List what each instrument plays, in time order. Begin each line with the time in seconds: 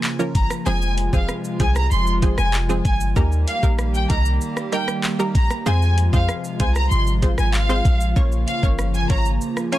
Already playing: analog synth pad C#3 F3 A#3 F4
0.04 clap, shaker
0.19 synth stab F3 A#3 C#4 A#4, shaker
0.35 808-style bass G1, violin section A#5, kick, closed hi-hat, shaker
0.50 cross-stick, shaker
0.66 808-style bass F1, analog synth pad C3 G#3 F4, synth stab F3 G#3 C4 G#4, violin section G#5, shaker
0.82 shaker
0.98 closed hi-hat, shaker
1.13 808-style bass F1, synth stab F3 G#3 C4 G#4, violin section F5, kick, shaker
1.29 cross-stick, shaker
1.44 shaker
1.60 808-style bass C2, synth stab F3 G#3 C4 G#4, violin section G#5, kick, closed hi-hat, shaker
1.75 violin section A#5, cross-stick, shaker
1.91 808-style bass F1, violin section C6, shaker
2.07 shaker
2.22 synth stab F3 G#3 C4 G#4, kick, closed hi-hat, shaker
2.38 808-style bass F1, violin section G#5, cross-stick, shaker
2.54 clap, shaker
2.69 synth stab F3 G#3 C4 G#4, shaker
2.85 808-style bass G1, violin section G#5, kick, closed hi-hat, shaker
3.01 shaker
3.16 808-style bass D#2, analog synth pad D#3 G3 A#3 G4, synth stab G3 A#3 D#4 A#4, kick, shaker
3.32 shaker
3.48 violin section F5, closed hi-hat, shaker
3.63 808-style bass A#1, synth stab G3 A#3 D#4 A#4, kick, shaker
3.79 cross-stick, shaker
3.94 violin section G5, shaker
4.10 808-style bass C2, synth stab G3 A#3 D#4 A#4, violin section A#5, kick, closed hi-hat, shaker
4.25 shaker
4.41 shaker
4.57 cross-stick, shaker
4.72 synth stab G3 A#3 D#4 A#4, violin section G5, closed hi-hat, shaker
4.88 cross-stick, shaker
5.04 clap, shaker
5.19 synth stab G3 A#3 D#4 A#4, shaker
5.35 808-style bass A#1, violin section A#5, kick, closed hi-hat, shaker
5.50 cross-stick, shaker
5.66 808-style bass F2, analog synth pad C3 F3 G#3 F4, synth stab G#3 C4 F4 C5, violin section G#5, shaker
5.82 shaker
5.98 closed hi-hat, shaker
6.13 808-style bass F2, synth stab G#3 C4 F4 C5, violin section F5, kick, shaker
6.29 cross-stick, shaker
6.44 shaker
6.60 808-style bass C2, synth stab G#3 C4 F4 C5, violin section G#5, kick, closed hi-hat, shaker
6.75 violin section A#5, cross-stick, shaker
6.91 808-style bass G#1, violin section C6, shaker
7.07 shaker
7.22 synth stab G#3 C4 F4 C5, kick, closed hi-hat, shaker
7.38 808-style bass G#1, violin section G#5, cross-stick, shaker
7.54 violin section F5, clap, shaker
7.69 synth stab G#3 C4 F4 C5, shaker
7.85 808-style bass A#1, kick, closed hi-hat, shaker
8.01 shaker
8.16 808-style bass A#1, analog synth pad C#3 A#3, synth stab A#3 C#4 F4 C#5, kick, shaker
8.32 shaker
8.47 violin section F5, closed hi-hat, shaker
8.63 808-style bass G1, synth stab A#3 C#4 F4 C#5, kick, shaker
8.79 cross-stick, shaker
8.94 violin section G#5, shaker
9.10 808-style bass G#1, synth stab A#3 C#4 F4 C#5, violin section A#5, kick, closed hi-hat, shaker
9.25 shaker
9.41 shaker
9.57 cross-stick, shaker
9.72 synth stab A#3 C#4 F4 C#5, violin section G#5, closed hi-hat, shaker